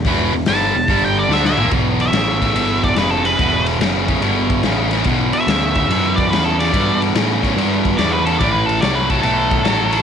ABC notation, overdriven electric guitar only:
X:1
M:4/4
L:1/8
Q:"Swing" 1/4=144
K:Em
V:1 name="Overdriven electric guitar" clef=bass
[E,,B,,E,] [E,,B,,] [G,,D,G,] [E,,B,,] [G,,D,G,]2 [D,A,D] [^A,,^E,^A,] | [E,,B,,]2 [E,,^C,] [E,,C,] [E,,B,,]2 [E,,C,] [E,,C,] | [E,,B,,]2 [E,,^C,] [E,,C,] [E,,B,,]2 [E,,C,] [E,,C,] | [E,,B,,]2 [E,,^C,] [E,,C,] [E,,B,,]2 [E,,C,] [E,,C,] |
[E,,B,,]2 [E,,^C,] [E,,C,] [E,,B,,]2 [E,,C,] [E,,C,] | [A,,E,]2 [A,,F,] [A,,F,] [A,,E,]2 [A,,F,] [A,,F,] |]